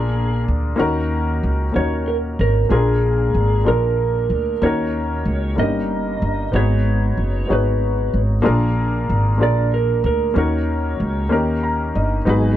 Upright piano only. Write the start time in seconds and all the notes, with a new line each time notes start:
Already playing: A#2 A#3 D4 F4 G#4 A#4
0.76 D#3 A#3 C#4 D#4 F#4 A#4
1.72 A#3 C#4 D#4 F#4
1.76 C#5
2.69 A#2 A#3 D4 F4 G#4 A#4
3.64 A#3 D4 F4 G#4 A#4
4.62 D#3 A#3 C#4 D#4 F#4 A#4
5.56 G2 A#3 C#4 D#4 G4 A#4
6.52 G#2 B3 D#4 F#4 G#4
6.56 B4
7.47 B3 D#4 F#4 G#4
7.51 C#5
8.42 A#2 A#3 D4 F4 G#4 A#4
9.38 A#3 D4 F4 G#4 A#4
10.34 D#3 A#3 C#4 D#4 F#4
10.38 A#4
11.29 D#3 A#3 C#4 D#4 G4 A#4
11.63 A#5
11.96 D#5
12.25 G#2 B3 D#4 F#4 G#4 B4